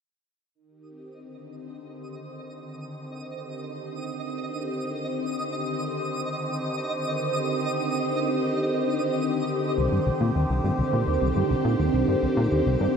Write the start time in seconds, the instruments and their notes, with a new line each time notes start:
0.55 analog synth pad D#3, synth texture D#5
0.70 analog synth pad G4
0.88 analog synth pad C4
1.18 analog synth pad D3
1.41 analog synth pad C5
9.77 analog synth bass C2, synth texture D5
9.92 analog synth bass G2
10.06 analog synth bass C2
10.21 analog synth bass A#2
10.35 analog synth bass D#2
10.50 analog synth bass C2
10.64 analog synth bass G2
10.78 analog synth bass C2
10.93 analog synth bass A#2
11.07 analog synth bass D#2
11.22 analog synth bass C2
11.36 analog synth bass G2
11.50 analog synth bass C2
11.65 analog synth bass A#2
11.79 analog synth bass D#2
11.94 analog synth bass C2
12.08 analog synth bass G2
12.23 analog synth bass C2
12.37 analog synth bass A#2
12.52 analog synth bass D#2
12.66 analog synth bass C2
12.81 analog synth bass G2